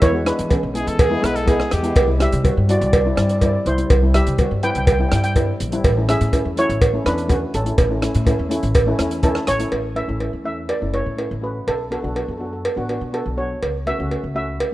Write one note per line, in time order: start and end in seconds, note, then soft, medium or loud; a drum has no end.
0.02 0.30 E2 loud
0.02 0.25 E4 medium
0.02 0.27 C#5 medium
0.02 kick loud
0.02 closed hi-hat medium
0.02 cowbell loud
0.12 0.21 G#3 medium
0.12 0.21 B3 medium
0.12 0.21 F#4 medium
0.25 0.40 G#3 medium
0.25 0.41 B3 medium
0.25 1.20 D4 medium
0.25 0.41 E4 medium
0.25 1.20 B4 medium
0.25 cross-stick medium
0.25 closed hi-hat medium
0.39 0.57 E3 medium
0.39 closed hi-hat medium
0.50 0.65 G#3 medium
0.50 0.65 B3 medium
0.50 0.65 C#4 medium
0.50 kick medium
0.50 closed hi-hat medium
0.50 cowbell medium
0.63 0.82 B1 medium
0.74 0.96 G#3 medium
0.74 0.97 B3 medium
0.74 0.97 E4 medium
0.74 0.89 G#4 medium
0.74 closed hi-hat medium
0.87 1.15 E2 medium
0.87 1.02 A4 medium
0.87 closed hi-hat medium
0.99 1.26 G#4 loud
0.99 kick loud
0.99 closed hi-hat medium
0.99 cowbell loud
1.10 1.18 G#3 medium
1.10 1.18 B3 medium
1.10 1.19 E4 loud
1.21 1.61 B1 medium
1.21 1.37 G#3 medium
1.21 1.37 B3 medium
1.21 1.38 E4 loud
1.21 1.37 B4 medium
1.21 cross-stick medium
1.21 closed hi-hat medium
1.36 1.50 A4 medium
1.36 closed hi-hat medium
1.46 1.69 G#3 medium
1.46 1.69 B3 medium
1.46 1.69 E4 loud
1.46 1.74 G#4 medium
1.46 kick medium
1.46 closed hi-hat medium
1.46 cowbell medium
1.60 cross-stick medium
1.71 1.91 E2 medium
1.71 2.09 G4 medium
1.71 cross-stick medium
1.71 closed hi-hat medium
1.83 1.95 G#3 medium
1.83 1.96 B3 medium
1.83 1.96 E4 medium
1.83 closed hi-hat medium
1.96 2.24 C2 loud
1.96 kick loud
1.96 closed hi-hat medium
1.96 cowbell loud
2.07 2.15 G3 medium
2.07 2.15 C4 medium
2.07 2.15 E4 medium
2.19 2.34 G3 medium
2.19 2.34 C4 medium
2.19 2.35 E4 medium
2.19 2.66 G4 medium
2.19 2.66 E5 medium
2.19 cross-stick medium
2.19 closed hi-hat medium
2.32 2.51 C3 medium
2.32 closed hi-hat medium
2.43 2.58 G3 medium
2.43 2.59 C4 medium
2.43 2.59 F#4 medium
2.43 kick medium
2.43 closed hi-hat medium
2.43 cowbell medium
2.57 2.76 G2 medium
2.68 2.90 G3 medium
2.68 2.91 C4 medium
2.68 2.91 E4 medium
2.68 2.77 F#4 medium
2.68 2.77 D5 medium
2.68 closed hi-hat medium
2.81 3.09 C2 loud
2.81 closed hi-hat medium
2.86 2.93 D5 medium
2.93 3.00 D5 medium
2.93 kick loud
2.93 closed hi-hat medium
2.93 cowbell loud
3.01 3.07 D5 medium
3.05 3.12 G3 medium
3.05 3.13 C4 medium
3.05 3.13 E4 medium
3.05 3.14 D5 medium
3.16 3.54 G2 medium
3.16 3.31 G3 medium
3.16 3.32 C4 medium
3.16 3.32 E4 medium
3.16 3.21 D5 medium
3.16 cross-stick medium
3.16 closed hi-hat medium
3.22 3.30 D5 medium
3.29 3.37 D5 medium
3.29 closed hi-hat medium
3.38 3.63 G3 medium
3.38 3.64 C4 medium
3.38 3.44 D5 medium
3.38 kick medium
3.38 closed hi-hat medium
3.38 cowbell medium
3.43 3.64 E4 medium
3.43 3.52 D5 medium
3.53 3.60 D5 medium
3.66 3.84 C2 medium
3.66 4.12 E4 medium
3.66 4.16 C5 medium
3.66 closed hi-hat medium
3.77 3.92 G3 medium
3.77 3.92 C4 medium
3.77 3.93 E4 medium
3.77 closed hi-hat medium
3.90 4.18 C2 loud
3.90 kick loud
3.90 closed hi-hat medium
3.90 cowbell medium
4.02 4.09 G3 medium
4.02 4.10 C4 medium
4.02 4.10 E4 medium
4.14 4.29 G3 medium
4.14 4.29 C4 medium
4.14 4.29 E4 medium
4.14 4.60 G4 medium
4.14 4.64 E5 loud
4.14 cross-stick medium
4.14 closed hi-hat medium
4.27 4.45 C3 loud
4.27 closed hi-hat medium
4.38 4.53 G3 medium
4.38 4.54 C4 medium
4.38 4.54 F#4 medium
4.38 kick medium
4.38 closed hi-hat medium
4.38 cowbell medium
4.51 4.70 G2 medium
4.63 4.85 G3 medium
4.63 4.85 C4 medium
4.63 4.85 E4 medium
4.63 4.70 B4 medium
4.63 4.69 G5 loud
4.63 closed hi-hat medium
4.70 4.77 G5 medium
4.75 5.03 C2 medium
4.75 4.84 G5 medium
4.75 closed hi-hat medium
4.86 4.91 G5 medium
4.86 kick loud
4.86 closed hi-hat medium
4.86 cowbell loud
4.93 5.00 G5 medium
4.99 5.06 G3 medium
4.99 5.07 C4 medium
4.99 5.07 E4 medium
4.99 5.08 G5 medium
5.09 5.49 G2 loud
5.09 5.26 G3 medium
5.09 5.26 C4 medium
5.09 5.26 E4 medium
5.09 5.15 G5 medium
5.09 cross-stick medium
5.09 closed hi-hat medium
5.16 5.23 G5 medium
5.24 5.30 G5 medium
5.24 closed hi-hat medium
5.35 5.57 G3 medium
5.35 5.57 C4 medium
5.35 5.58 E4 medium
5.35 kick medium
5.35 closed hi-hat medium
5.35 cowbell medium
5.60 5.79 A#1 medium
5.60 closed hi-hat medium
5.72 5.84 G3 medium
5.72 5.84 C4 medium
5.72 5.85 E4 loud
5.72 closed hi-hat medium
5.84 6.12 A1 loud
5.84 kick loud
5.84 closed hi-hat medium
5.84 cowbell medium
5.96 6.03 A3 medium
5.96 6.04 C#4 medium
5.96 6.04 E4 medium
6.08 6.23 A3 medium
6.08 6.23 C#4 medium
6.08 6.23 E4 medium
6.08 6.54 G#4 medium
6.08 6.54 E5 loud
6.08 cross-stick medium
6.08 closed hi-hat medium
6.21 6.39 A2 loud
6.21 closed hi-hat medium
6.32 6.47 A3 medium
6.32 6.47 C#4 medium
6.32 6.48 E4 medium
6.32 kick medium
6.32 closed hi-hat medium
6.32 cowbell medium
6.45 6.64 E2 medium
6.57 6.78 A3 medium
6.57 6.79 C#4 medium
6.57 6.79 E4 medium
6.57 7.03 E4 medium
6.57 7.03 C#5 loud
6.57 closed hi-hat medium
6.69 6.97 A1 medium
6.69 closed hi-hat medium
6.82 kick loud
6.82 closed hi-hat medium
6.82 cowbell loud
6.93 7.00 A3 medium
6.93 7.00 C#4 medium
6.93 7.01 E4 medium
7.04 7.43 E2 loud
7.04 7.19 A3 medium
7.04 7.20 C#4 medium
7.04 7.51 D4 medium
7.04 7.20 E4 medium
7.04 7.55 B4 loud
7.04 cross-stick medium
7.04 closed hi-hat medium
7.18 closed hi-hat medium
7.28 7.50 A3 medium
7.28 7.51 C#4 medium
7.28 7.51 F#4 medium
7.28 kick medium
7.28 closed hi-hat medium
7.28 cowbell medium
7.54 7.73 A1 medium
7.54 9.20 C#4 medium
7.54 9.20 A4 medium
7.54 closed hi-hat medium
7.64 7.80 A3 medium
7.64 7.80 C#4 medium
7.64 7.80 E4 medium
7.64 closed hi-hat medium
7.78 8.06 A1 loud
7.78 kick loud
7.78 closed hi-hat medium
7.78 cowbell loud
7.89 7.97 A3 medium
7.89 7.97 C#4 medium
7.89 7.98 E4 medium
8.01 8.16 A3 medium
8.01 8.17 C#4 medium
8.01 8.17 E4 medium
8.01 cross-stick medium
8.01 closed hi-hat medium
8.15 8.33 A2 loud
8.15 closed hi-hat medium
8.25 8.40 A3 medium
8.25 8.41 C#4 medium
8.25 8.41 E4 loud
8.25 kick loud
8.25 closed hi-hat medium
8.25 cowbell medium
8.39 8.57 E2 medium
8.49 8.72 A3 medium
8.49 8.72 C#4 medium
8.49 8.73 E4 loud
8.49 closed hi-hat medium
8.63 8.91 A1 medium
8.63 closed hi-hat medium
8.75 kick loud
8.75 closed hi-hat medium
8.75 cowbell loud
8.86 8.94 A3 medium
8.86 8.94 C#4 medium
8.86 8.95 E4 loud
8.98 9.36 E2 medium
8.98 9.13 A3 medium
8.98 9.13 C#4 medium
8.98 9.14 E4 loud
8.98 cross-stick medium
8.98 closed hi-hat medium
9.11 closed hi-hat medium
9.23 9.45 A3 medium
9.23 9.45 C#4 medium
9.23 9.46 E4 loud
9.23 9.48 A4 medium
9.23 kick medium
9.23 closed hi-hat medium
9.23 cowbell medium
9.35 cross-stick medium
9.47 9.67 A1 medium
9.47 9.98 C#5 loud
9.47 cross-stick medium
9.47 closed hi-hat medium
9.59 9.71 A3 medium
9.59 9.72 C#4 medium
9.59 9.72 E4 medium
9.59 closed hi-hat medium
9.72 10.00 A1 medium
9.72 cowbell medium
9.95 10.03 A3 medium
9.95 10.03 C#4 medium
9.95 10.04 E4 medium
9.95 10.44 E5 medium
9.95 cowbell medium
10.07 10.27 A1 medium
10.07 10.15 A3 medium
10.07 10.15 C#4 medium
10.07 10.16 E4 medium
10.20 10.35 A3 medium
10.20 10.35 C#4 medium
10.20 10.36 E4 medium
10.20 cowbell medium
10.33 10.70 E2 medium
10.44 10.66 A3 medium
10.44 10.67 C#4 medium
10.44 10.67 E4 medium
10.44 10.70 E5 medium
10.69 10.95 D5 medium
10.69 cowbell medium
10.80 11.01 F#1 medium
10.80 10.88 A3 medium
10.80 10.89 C#4 medium
10.80 10.89 E4 medium
10.93 11.08 A3 medium
10.93 11.08 C#4 medium
10.93 11.09 E4 medium
10.93 11.44 C#5 medium
10.93 cowbell medium
11.06 11.25 A2 medium
11.16 11.32 A3 medium
11.16 11.32 C#4 medium
11.16 11.33 E4 medium
11.16 cowbell medium
11.31 11.59 A1 medium
11.41 11.66 A3 medium
11.41 11.67 C#4 medium
11.41 11.67 F#4 medium
11.41 11.68 B4 medium
11.67 11.95 B1 medium
11.67 11.79 A4 medium
11.67 cowbell medium
11.90 11.98 B3 medium
11.90 11.98 D4 medium
11.90 11.99 F#4 medium
11.90 11.99 A4 medium
11.90 cowbell medium
12.00 12.10 B3 medium
12.00 12.11 D4 medium
12.00 12.11 F#4 medium
12.00 12.07 A4 soft
12.04 12.23 B1 medium
12.04 12.13 A4 soft
12.14 12.30 B3 medium
12.14 12.30 D4 medium
12.14 12.31 F#4 medium
12.14 12.21 A4 soft
12.14 cowbell medium
12.23 12.29 A4 soft
12.28 12.66 F#2 medium
12.28 12.36 A4 soft
12.37 12.62 B3 medium
12.37 12.62 D4 medium
12.37 12.62 F#4 medium
12.37 12.44 A4 soft
12.45 12.52 A4 soft
12.53 12.59 A4 soft
12.65 cowbell medium
12.76 12.96 A1 medium
12.76 12.84 B3 medium
12.76 12.84 D4 medium
12.76 12.85 F#4 medium
12.88 13.03 B3 medium
12.88 13.04 D4 medium
12.88 13.04 F#4 medium
12.88 cowbell medium
13.01 13.20 B2 medium
13.12 13.27 B3 medium
13.12 13.28 D4 medium
13.12 13.28 F#4 medium
13.12 13.39 A4 medium
13.12 cowbell medium
13.26 13.54 B1 medium
13.37 13.62 B3 medium
13.37 13.62 D4 medium
13.37 13.63 F#4 medium
13.37 13.88 C#5 medium
13.63 13.91 C#2 medium
13.63 cowbell medium
13.86 13.94 A3 medium
13.86 13.94 C#4 medium
13.86 13.95 F#4 medium
13.86 14.35 E5 medium
13.86 cowbell medium
13.98 14.18 C#2 medium
13.98 14.06 A3 medium
13.98 14.06 C#4 medium
13.98 14.07 F#4 medium
14.10 14.25 A3 medium
14.10 14.26 C#4 medium
14.10 14.26 F#4 medium
14.10 cowbell medium
14.24 14.61 C#2 medium
14.34 14.57 A3 medium
14.34 14.57 C#4 medium
14.34 14.58 F#4 medium
14.34 14.74 E5 medium
14.60 cowbell medium